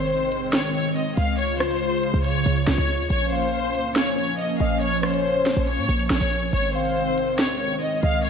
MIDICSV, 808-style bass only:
0, 0, Header, 1, 2, 480
1, 0, Start_track
1, 0, Tempo, 428571
1, 1556, Time_signature, 4, 2, 24, 8
1, 9294, End_track
2, 0, Start_track
2, 0, Title_t, "808-style bass"
2, 0, Program_c, 0, 38
2, 0, Note_on_c, 0, 32, 107
2, 355, Note_on_c, 0, 34, 104
2, 372, Note_off_c, 0, 32, 0
2, 1039, Note_off_c, 0, 34, 0
2, 1315, Note_on_c, 0, 37, 105
2, 2352, Note_off_c, 0, 37, 0
2, 2395, Note_on_c, 0, 37, 112
2, 2635, Note_on_c, 0, 36, 101
2, 2652, Note_off_c, 0, 37, 0
2, 2749, Note_off_c, 0, 36, 0
2, 2754, Note_on_c, 0, 37, 103
2, 2985, Note_off_c, 0, 37, 0
2, 2995, Note_on_c, 0, 37, 105
2, 3110, Note_off_c, 0, 37, 0
2, 3115, Note_on_c, 0, 37, 106
2, 3355, Note_on_c, 0, 39, 101
2, 3372, Note_off_c, 0, 37, 0
2, 3469, Note_off_c, 0, 39, 0
2, 3475, Note_on_c, 0, 34, 110
2, 4196, Note_on_c, 0, 37, 100
2, 4213, Note_off_c, 0, 34, 0
2, 4880, Note_off_c, 0, 37, 0
2, 5156, Note_on_c, 0, 34, 104
2, 6192, Note_off_c, 0, 34, 0
2, 6235, Note_on_c, 0, 34, 109
2, 6475, Note_on_c, 0, 46, 103
2, 6492, Note_off_c, 0, 34, 0
2, 6589, Note_off_c, 0, 46, 0
2, 6595, Note_on_c, 0, 34, 108
2, 6825, Note_off_c, 0, 34, 0
2, 6835, Note_on_c, 0, 34, 111
2, 6951, Note_off_c, 0, 34, 0
2, 6956, Note_on_c, 0, 34, 101
2, 7301, Note_off_c, 0, 34, 0
2, 7315, Note_on_c, 0, 32, 107
2, 8035, Note_on_c, 0, 34, 104
2, 8052, Note_off_c, 0, 32, 0
2, 8719, Note_off_c, 0, 34, 0
2, 8995, Note_on_c, 0, 37, 105
2, 9294, Note_off_c, 0, 37, 0
2, 9294, End_track
0, 0, End_of_file